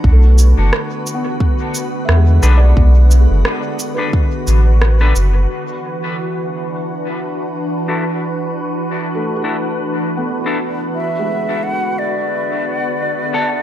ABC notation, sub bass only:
X:1
M:4/4
L:1/16
Q:"Swing 16ths" 1/4=88
K:Emix
V:1 name="Sub bass" clef=bass
B,,,3 F,,, z8 E,,2 B,,,2 | B,,,3 F,,, z6 A,,,4 F,,,2 | z16 | z16 |
z16 |]